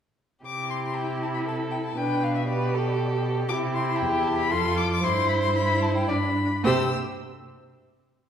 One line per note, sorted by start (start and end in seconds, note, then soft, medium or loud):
0.45 1.94 C3 medium
0.45 1.95 E4 medium
0.45 1.47 G4 soft
0.45 0.72 D6 medium
0.71 0.84 C6 medium
0.85 0.97 C6 medium
0.96 1.22 G5 medium
1.23 1.28 A5 medium
1.34 1.39 B5 medium
1.46 1.97 A4 soft
1.46 1.56 A5 medium
1.71 1.76 G5 medium
1.85 1.99 A5 medium
1.97 3.47 B2 medium
1.97 2.48 D4 medium
1.97 2.48 B4 soft
1.97 2.25 G5 medium
2.24 2.37 F5 medium
2.36 2.47 E5 medium
2.47 3.52 G4 medium
2.47 2.75 B4 medium
2.47 3.22 D5 medium
2.74 3.52 A4 medium
3.49 4.03 C3 medium
3.49 4.53 E4 medium
3.49 4.01 G4 medium
3.49 3.57 D6 loud
3.74 3.86 C6 medium
3.87 3.99 C6 medium
3.98 4.53 E2 medium
3.98 4.25 G5 medium
4.02 4.51 G4 medium
4.24 4.37 A5 medium
4.38 4.53 B5 loud
4.51 5.03 F2 medium
4.51 5.05 F4 medium
4.51 5.02 A4 medium
4.51 4.79 C6 loud
4.77 4.91 D6 loud
4.92 5.05 D6 loud
5.03 6.07 G2 medium
5.03 5.55 E4 medium
5.03 6.07 C5 medium
5.03 5.30 C6 loud
5.29 5.41 B5 loud
5.41 5.54 C6 loud
5.55 6.11 E4 medium
5.55 5.84 B5 loud
5.82 5.95 A5 medium
5.95 6.11 G5 medium
6.08 6.42 G2 medium
6.08 6.43 D4 medium
6.08 6.16 D5 medium
6.08 6.64 B5 medium
6.64 6.94 C3 medium
6.64 6.94 G4 medium
6.64 6.94 C5 medium
6.64 6.94 E6 loud